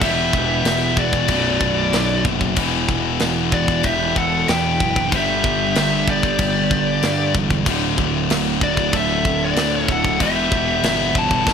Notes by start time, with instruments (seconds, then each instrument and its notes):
0.01 picked electric bass E1, distorted electric guitar E2 B2 E3, lead electric guitar G4 E5, kick, crash
0.33 picked electric bass E1, kick
0.64 picked electric bass E1, snare, crash
0.97 lead electric guitar F#4 D5, kick
1.13 kick
1.28 picked electric bass B0, distorted electric guitar B1 F#2, kick, crash
1.33 distorted electric guitar B2
1.61 kick
1.92 picked electric bass B1, snare, crash
2.25 picked electric bass F#1, kick
2.41 kick
2.56 picked electric bass E1, distorted electric guitar E2 B2, kick, crash
2.61 distorted electric guitar E3
2.89 picked electric bass E1, kick
3.20 picked electric bass E1, snare, crash
3.52 lead electric guitar F#4 D5, kick
3.68 kick
3.83 picked electric bass E1, lead electric guitar G4 E5, kick, crash
4.16 lead electric guitar A4 F#5, kick
4.48 picked electric bass E2, lead electric guitar B4 G5, snare, crash
4.80 picked electric bass F#1, kick
4.96 kick
5.12 picked electric bass G1, distorted electric guitar G2 D3 G3, lead electric guitar G4 E5, kick, crash
5.44 picked electric bass G1, kick
5.75 picked electric bass G1, snare, crash
6.08 lead electric guitar G4 D5, kick
6.23 kick
6.39 picked electric bass G1, kick, crash
6.71 kick
7.03 picked electric bass G2, snare, crash
7.34 picked electric bass E1, kick
7.50 kick
7.66 picked electric bass D1, distorted electric guitar D2 A2 D3, kick, crash
7.98 picked electric bass D1, kick
8.30 picked electric bass D1, snare, crash
8.61 lead electric guitar F#4 D5, kick
8.77 kick
8.93 picked electric bass D1, lead electric guitar A4 E5, kick, crash
9.25 kick
9.43 lead electric guitar F#4 D5
9.56 picked electric bass D2, snare, crash
9.75 lead electric guitar F4
9.79 lead electric guitar C#5
9.88 picked electric bass D1, lead electric guitar A4 F#5, kick
10.04 kick
10.19 picked electric bass E1, distorted electric guitar E2 B2 E3, lead electric guitar G4 E5, kick, crash
10.51 picked electric bass E1, kick
10.83 picked electric bass G1, snare, crash
11.15 lead electric guitar C#5 A5, kick
11.31 kick
11.46 picked electric bass F#1, distorted electric guitar F#2 C#3 F#3, kick, snare